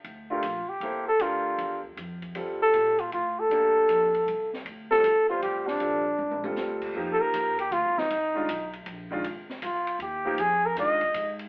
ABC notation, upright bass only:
X:1
M:3/4
L:1/8
Q:"Swing" 1/4=156
K:Gdor
V:1 name="Upright bass" clef=bass
D,,2 B,,, z C,,2 | D,,2 E,,2 F,,2 | G,,2 B,,2 A,,2 | G,,2 F,,2 C,,2 |
D,,2 G,,,2 A,,,2 | B,,,2 (3C,, B,,, G,,, D,,2 | [K:Fdor] F,, z E,,2 (3D,, C,, A,,, | C,,2 =B,,,2 _B,,,2 |
A,,,2 C,,2 E,,2 | F,,2 G,,2 A,,2 |]